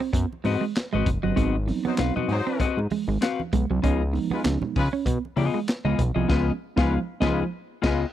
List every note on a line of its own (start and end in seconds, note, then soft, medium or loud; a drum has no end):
0.00 0.12 C4 medium
0.13 0.26 F#2 loud
0.13 0.28 B3 medium
0.13 kick medium
0.13 closed hi-hat loud
0.13 muted conga soft
0.32 muted conga soft
0.44 0.57 G#2 medium
0.44 0.63 C4 medium
0.44 0.64 F#4 medium
0.44 0.64 B4 medium
0.44 0.64 D#5 loud
0.44 muted clean electric guitar stroke soft
0.44 open hi-hat medium
0.44 high conga medium
0.61 0.73 G#3 medium
0.75 snare loud
0.75 clap medium
0.75 closed hi-hat medium
0.75 muted conga soft
0.93 1.04 G#1 medium
0.93 1.04 G#3 medium
0.93 1.09 C4 medium
0.93 1.09 F#4 medium
0.93 1.09 B4 medium
0.93 1.08 D#5 medium
0.93 muted conga soft
0.93 high conga medium
1.06 1.19 F#1 medium
1.06 muted clean electric guitar stroke soft
1.06 kick loud
1.06 closed hi-hat medium
1.06 high conga medium
1.06 low conga medium
1.23 1.34 G1 medium
1.23 1.35 F#3 medium
1.23 1.35 C4 soft
1.23 1.35 F#4 medium
1.23 1.35 B4 medium
1.23 1.35 D#5 medium
1.36 1.72 G#1 loud
1.36 1.55 F#3 medium
1.36 1.51 G#3 medium
1.36 1.55 B3 medium
1.36 1.55 C4 medium
1.36 1.55 D#4 medium
1.36 1.55 F#4 medium
1.36 1.55 B4 medium
1.36 1.56 D#5 medium
1.36 kick medium
1.36 closed hi-hat medium
1.66 2.34 F#3 medium
1.66 2.34 B3 medium
1.66 2.34 C4 medium
1.66 2.34 D#4 medium
1.66 muted clean electric guitar stroke soft
1.66 open hi-hat medium
1.66 high conga medium
1.85 1.94 F#3 medium
1.85 1.96 B3 medium
1.85 1.94 D#4 medium
1.85 1.95 C5 medium
1.85 high conga medium
1.98 2.11 B1 medium
1.98 2.13 C4 medium
1.98 2.13 F#4 medium
1.98 2.14 B4 medium
1.98 2.14 F5 medium
1.98 snare loud
1.98 clap loud
1.98 closed hi-hat medium
1.98 muted conga soft
2.16 2.32 C4 medium
2.16 2.32 F#4 medium
2.16 2.31 B4 medium
2.16 2.31 D#5 medium
2.16 muted clean electric guitar stroke soft
2.16 muted conga soft
2.16 high conga medium
2.16 low conga medium
2.28 2.41 G#2 loud
2.28 2.71 F#3 loud
2.28 2.71 D#4 loud
2.28 2.71 C5 loud
2.28 open hi-hat medium
2.47 2.58 C4 medium
2.60 2.67 G#2 medium
2.60 2.79 C4 medium
2.60 2.79 F#4 medium
2.60 2.79 B4 medium
2.60 2.79 D#5 medium
2.60 muted clean electric guitar stroke soft
2.60 kick medium
2.60 closed hi-hat medium
2.60 muted conga soft
2.77 2.87 G#2 medium
2.77 muted conga soft
2.90 3.06 G#3 medium
2.90 open hi-hat medium
2.90 high conga medium
3.08 3.18 G#1 loud
3.08 3.20 G#3 medium
3.21 3.40 C4 medium
3.21 3.41 F#4 medium
3.21 3.41 B4 medium
3.21 3.41 F5 medium
3.21 muted clean electric guitar stroke soft
3.21 snare loud
3.21 clap loud
3.21 closed hi-hat medium
3.21 muted conga soft
3.40 muted conga soft
3.40 high conga medium
3.53 3.66 B1 medium
3.53 3.67 G#3 medium
3.53 kick medium
3.53 closed hi-hat medium
3.53 high conga medium
3.53 low conga medium
3.70 3.80 C2 loud
3.70 3.82 F#3 medium
3.82 4.19 C#2 loud
3.82 4.01 F3 medium
3.82 4.02 G#3 medium
3.82 4.02 B3 medium
3.82 3.98 C#4 medium
3.82 4.02 D#4 medium
3.82 4.02 F4 medium
3.82 4.02 G#4 medium
3.82 4.02 D#5 medium
3.82 kick loud
3.82 closed hi-hat medium
3.82 muted conga soft
4.13 4.81 F3 medium
4.13 4.81 G#3 medium
4.13 4.81 B3 medium
4.13 4.81 D#4 medium
4.13 muted clean electric guitar stroke soft
4.13 open hi-hat medium
4.13 high conga medium
4.31 4.40 G#3 medium
4.31 4.43 B3 medium
4.31 4.40 F4 medium
4.31 4.40 B4 medium
4.31 high conga medium
4.44 4.58 C#2 loud
4.44 4.59 C#4 medium
4.44 snare loud
4.44 clap loud
4.44 closed hi-hat medium
4.44 muted conga soft
4.62 muted clean electric guitar stroke soft
4.62 muted conga soft
4.62 high conga medium
4.62 low conga medium
4.76 4.89 C#3 loud
4.76 4.87 G#3 medium
4.76 4.87 F4 medium
4.76 4.87 B4 loud
4.76 kick loud
4.76 open hi-hat medium
4.93 5.04 C#4 medium
5.06 5.19 B2 medium
5.06 5.21 B3 medium
5.06 kick medium
5.06 closed hi-hat loud
5.25 muted conga soft
5.36 5.50 C#3 medium
5.36 5.58 B3 medium
5.36 5.58 F4 loud
5.36 5.59 G#4 medium
5.36 5.59 D#5 medium
5.36 muted clean electric guitar stroke soft
5.36 open hi-hat medium
5.36 high conga medium
5.54 5.66 G#3 medium
5.68 snare loud
5.68 clap medium
5.68 closed hi-hat medium
5.85 5.95 C#2 medium
5.85 5.97 G#3 medium
5.85 6.01 B3 medium
5.85 6.01 F4 medium
5.85 6.01 G#4 medium
5.85 6.00 D#5 medium
5.85 muted conga soft
5.85 high conga medium
5.99 6.11 B1 medium
5.99 muted clean electric guitar stroke soft
5.99 kick medium
5.99 closed hi-hat medium
5.99 high conga medium
5.99 low conga medium
6.15 6.26 C2 loud
6.15 6.27 F3 medium
6.15 6.27 B3 medium
6.15 6.27 F4 medium
6.15 6.28 G#4 medium
6.15 6.27 D#5 medium
6.28 6.51 C#2 loud
6.28 6.51 F3 medium
6.28 6.51 G#3 medium
6.28 6.46 G#3 medium
6.28 6.50 B3 medium
6.28 6.51 B3 medium
6.28 6.51 C#4 medium
6.28 6.51 F4 medium
6.28 6.45 F4 medium
6.28 6.51 G#4 medium
6.28 6.46 B4 medium
6.28 6.51 D#5 loud
6.28 kick loud
6.28 snare medium
6.28 crash medium
6.76 6.98 C#2 loud
6.76 6.98 G#3 loud
6.76 6.93 G#3 medium
6.76 6.97 B3 loud
6.76 6.98 B3 medium
6.76 6.97 D#4 loud
6.76 6.98 F4 medium
6.76 6.93 F4 medium
6.76 6.98 G#4 loud
6.76 6.93 B4 loud
6.76 6.98 F5 medium
6.76 kick loud
6.76 snare loud
6.83 7.01 F3 loud
7.20 7.43 C#2 loud
7.20 7.43 G#3 loud
7.20 7.38 G#3 loud
7.20 7.43 B3 loud
7.20 7.44 B3 medium
7.20 7.43 D#4 loud
7.20 7.38 F4 loud
7.20 7.44 F4 loud
7.20 7.44 G#4 loud
7.20 7.38 B4 loud
7.20 7.43 D#5 loud
7.20 kick loud
7.20 snare loud
7.27 7.46 F3 loud
7.82 8.05 C#2 loud
7.82 8.00 G#3 medium
7.82 8.04 B3 loud
7.82 8.04 F4 loud
7.82 8.00 F4 loud
7.82 8.05 G#4 loud
7.82 8.00 B4 loud
7.82 8.05 D#5 loud
7.82 kick loud
7.82 snare loud
7.82 crash medium